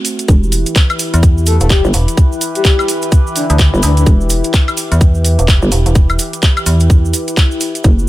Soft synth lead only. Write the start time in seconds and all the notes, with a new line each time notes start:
1.47 A4
1.61 A4
1.70 G4
2.56 G4
3.36 D4
3.50 D4
3.83 D4
3.98 D4